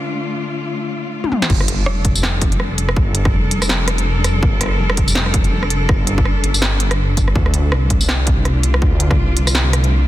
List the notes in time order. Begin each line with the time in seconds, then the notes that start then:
Already playing: D3 A3 D4 F4
1.24 high tom
1.32 mid tom
1.42 snare
1.50 G1 G3, kick, crash
1.60 cross-stick
1.66 D4 A4, closed hi-hat
1.86 F1, cross-stick
2.05 kick, closed hi-hat
2.15 tambourine
2.23 cross-stick, snare
2.42 kick, closed hi-hat
2.52 closed hi-hat
2.60 cross-stick
2.78 closed hi-hat
2.85 A#4
2.89 cross-stick
2.96 G1, kick
3.15 closed hi-hat
3.25 kick, cross-stick
3.33 F1
3.51 closed hi-hat
3.62 cross-stick, tambourine
3.69 snare
3.88 cross-stick, closed hi-hat
3.98 closed hi-hat
4.24 cross-stick, closed hi-hat, tambourine
4.43 G1, kick
4.61 cross-stick, closed hi-hat
4.63 cross-stick
4.66 cross-stick
4.69 cross-stick
4.71 cross-stick
4.73 cross-stick
4.75 cross-stick
4.77 F1, cross-stick
4.90 cross-stick
4.97 kick, closed hi-hat
5.08 tambourine
5.15 snare
5.26 cross-stick
5.34 kick, closed hi-hat
5.44 closed hi-hat
5.63 cross-stick
5.70 closed hi-hat
5.89 G1, kick, cross-stick
6.07 closed hi-hat
6.18 kick
6.25 cross-stick
6.44 G1, closed hi-hat
6.54 tambourine
6.62 cross-stick, snare
6.80 closed hi-hat
6.91 cross-stick, closed hi-hat
7.17 kick, closed hi-hat, tambourine
7.28 cross-stick
7.35 D2 D3, kick
7.46 cross-stick
7.54 closed hi-hat
7.58 A3
7.72 C2, cross-stick
7.90 kick, closed hi-hat
8.01 tambourine
8.09 cross-stick, snare
8.27 F4, kick, closed hi-hat
8.45 cross-stick, closed hi-hat
8.63 closed hi-hat
8.74 cross-stick
8.82 D2, kick
9.00 closed hi-hat
9.11 kick, cross-stick
9.18 C2
9.37 closed hi-hat
9.47 cross-stick, tambourine
9.55 snare
9.73 cross-stick, closed hi-hat
9.84 closed hi-hat